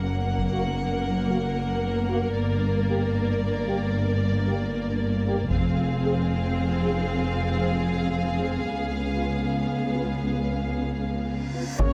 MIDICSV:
0, 0, Header, 1, 13, 480
1, 0, Start_track
1, 0, Tempo, 524476
1, 2158, Time_signature, 12, 3, 24, 8
1, 10918, End_track
2, 0, Start_track
2, 0, Title_t, "Violin section"
2, 0, Program_c, 0, 48
2, 0, Note_on_c, 0, 78, 49
2, 2123, Note_off_c, 0, 78, 0
2, 2146, Note_on_c, 0, 74, 51
2, 4997, Note_off_c, 0, 74, 0
2, 5040, Note_on_c, 0, 77, 54
2, 10581, Note_off_c, 0, 77, 0
2, 10802, Note_on_c, 0, 78, 44
2, 10918, Note_off_c, 0, 78, 0
2, 10918, End_track
3, 0, Start_track
3, 0, Title_t, "Flute section"
3, 0, Program_c, 1, 73
3, 10795, Note_on_c, 1, 73, 51
3, 10918, Note_off_c, 1, 73, 0
3, 10918, End_track
4, 0, Start_track
4, 0, Title_t, "Trumpet section"
4, 0, Program_c, 2, 61
4, 10798, Note_on_c, 2, 73, 57
4, 10918, Note_off_c, 2, 73, 0
4, 10918, End_track
5, 0, Start_track
5, 0, Title_t, "Violin section"
5, 0, Program_c, 3, 48
5, 0, Note_on_c, 3, 70, 45
5, 5010, Note_off_c, 3, 70, 0
5, 5039, Note_on_c, 3, 68, 51
5, 10581, Note_off_c, 3, 68, 0
5, 10810, Note_on_c, 3, 73, 54
5, 10918, Note_off_c, 3, 73, 0
5, 10918, End_track
6, 0, Start_track
6, 0, Title_t, "String section"
6, 0, Program_c, 4, 48
6, 10791, Note_on_c, 4, 66, 57
6, 10794, Note_on_c, 4, 58, 58
6, 10800, Note_on_c, 4, 70, 52
6, 10800, Note_on_c, 4, 73, 58
6, 10918, Note_off_c, 4, 58, 0
6, 10918, Note_off_c, 4, 66, 0
6, 10918, Note_off_c, 4, 70, 0
6, 10918, Note_off_c, 4, 73, 0
6, 10918, End_track
7, 0, Start_track
7, 0, Title_t, "French horn section"
7, 0, Program_c, 5, 60
7, 481, Note_on_c, 5, 58, 50
7, 481, Note_on_c, 5, 66, 50
7, 564, Note_off_c, 5, 58, 0
7, 564, Note_off_c, 5, 66, 0
7, 1194, Note_on_c, 5, 66, 47
7, 1199, Note_on_c, 5, 58, 49
7, 1279, Note_off_c, 5, 66, 0
7, 1282, Note_off_c, 5, 58, 0
7, 1916, Note_on_c, 5, 58, 53
7, 1917, Note_on_c, 5, 66, 49
7, 2001, Note_off_c, 5, 58, 0
7, 2001, Note_off_c, 5, 66, 0
7, 2649, Note_on_c, 5, 58, 53
7, 2655, Note_on_c, 5, 67, 56
7, 2729, Note_off_c, 5, 58, 0
7, 2733, Note_off_c, 5, 67, 0
7, 3364, Note_on_c, 5, 58, 48
7, 3368, Note_on_c, 5, 67, 51
7, 3446, Note_off_c, 5, 58, 0
7, 3449, Note_off_c, 5, 67, 0
7, 4090, Note_on_c, 5, 67, 48
7, 4095, Note_on_c, 5, 58, 49
7, 4170, Note_off_c, 5, 67, 0
7, 4173, Note_off_c, 5, 58, 0
7, 4822, Note_on_c, 5, 58, 47
7, 4822, Note_on_c, 5, 67, 51
7, 4898, Note_off_c, 5, 58, 0
7, 4898, Note_off_c, 5, 67, 0
7, 5527, Note_on_c, 5, 68, 53
7, 5529, Note_on_c, 5, 60, 53
7, 5608, Note_off_c, 5, 68, 0
7, 5610, Note_off_c, 5, 60, 0
7, 6244, Note_on_c, 5, 60, 42
7, 6249, Note_on_c, 5, 68, 51
7, 6326, Note_off_c, 5, 60, 0
7, 6330, Note_off_c, 5, 68, 0
7, 6958, Note_on_c, 5, 60, 41
7, 6958, Note_on_c, 5, 68, 43
7, 7043, Note_off_c, 5, 60, 0
7, 7043, Note_off_c, 5, 68, 0
7, 7674, Note_on_c, 5, 60, 42
7, 7676, Note_on_c, 5, 68, 42
7, 7760, Note_off_c, 5, 60, 0
7, 7761, Note_off_c, 5, 68, 0
7, 8383, Note_on_c, 5, 65, 42
7, 8391, Note_on_c, 5, 59, 41
7, 8473, Note_off_c, 5, 65, 0
7, 8478, Note_off_c, 5, 59, 0
7, 9109, Note_on_c, 5, 65, 40
7, 9116, Note_on_c, 5, 59, 38
7, 9197, Note_off_c, 5, 65, 0
7, 9202, Note_off_c, 5, 59, 0
7, 9856, Note_on_c, 5, 65, 32
7, 9860, Note_on_c, 5, 59, 37
7, 9934, Note_off_c, 5, 65, 0
7, 9937, Note_off_c, 5, 59, 0
7, 10563, Note_on_c, 5, 59, 35
7, 10564, Note_on_c, 5, 65, 36
7, 10646, Note_off_c, 5, 59, 0
7, 10647, Note_off_c, 5, 65, 0
7, 10802, Note_on_c, 5, 61, 67
7, 10918, Note_off_c, 5, 61, 0
7, 10918, End_track
8, 0, Start_track
8, 0, Title_t, "Viola section"
8, 0, Program_c, 6, 48
8, 0, Note_on_c, 6, 58, 52
8, 5004, Note_off_c, 6, 58, 0
8, 5038, Note_on_c, 6, 60, 54
8, 7883, Note_off_c, 6, 60, 0
8, 7917, Note_on_c, 6, 59, 43
8, 10579, Note_off_c, 6, 59, 0
8, 10796, Note_on_c, 6, 49, 50
8, 10802, Note_on_c, 6, 70, 48
8, 10845, Note_off_c, 6, 49, 0
8, 10918, Note_off_c, 6, 70, 0
8, 10918, End_track
9, 0, Start_track
9, 0, Title_t, "Cello section"
9, 0, Program_c, 7, 48
9, 0, Note_on_c, 7, 42, 41
9, 2158, Note_on_c, 7, 43, 50
9, 2159, Note_off_c, 7, 42, 0
9, 5003, Note_off_c, 7, 43, 0
9, 5032, Note_on_c, 7, 41, 47
9, 7880, Note_off_c, 7, 41, 0
9, 7912, Note_on_c, 7, 37, 44
9, 10614, Note_off_c, 7, 37, 0
9, 10803, Note_on_c, 7, 42, 45
9, 10851, Note_off_c, 7, 42, 0
9, 10918, End_track
10, 0, Start_track
10, 0, Title_t, "Double bass section"
10, 0, Program_c, 8, 48
10, 0, Note_on_c, 8, 30, 47
10, 2149, Note_on_c, 8, 31, 54
10, 2160, Note_off_c, 8, 30, 0
10, 4998, Note_off_c, 8, 31, 0
10, 5039, Note_on_c, 8, 29, 50
10, 7883, Note_off_c, 8, 29, 0
10, 7921, Note_on_c, 8, 37, 42
10, 10618, Note_off_c, 8, 37, 0
10, 10799, Note_on_c, 8, 30, 51
10, 10847, Note_off_c, 8, 30, 0
10, 10918, End_track
11, 0, Start_track
11, 0, Title_t, "Impact"
11, 0, Program_c, 10, 103
11, 10800, Note_on_c, 10, 60, 51
11, 10918, Note_off_c, 10, 60, 0
11, 10918, End_track
12, 0, Start_track
12, 0, Title_t, "Reverse cymbal"
12, 0, Program_c, 11, 119
12, 7920, Note_on_c, 11, 60, 42
12, 10800, Note_off_c, 11, 60, 0
12, 10918, End_track
13, 0, Start_track
13, 0, Title_t, "Taiko and cinematic ensemble drums"
13, 350, Note_on_c, 9, 41, 26
13, 441, Note_off_c, 9, 41, 0
13, 5034, Note_on_c, 9, 41, 47
13, 5125, Note_off_c, 9, 41, 0
13, 10798, Note_on_c, 9, 41, 84
13, 10889, Note_off_c, 9, 41, 0
13, 10918, End_track
0, 0, End_of_file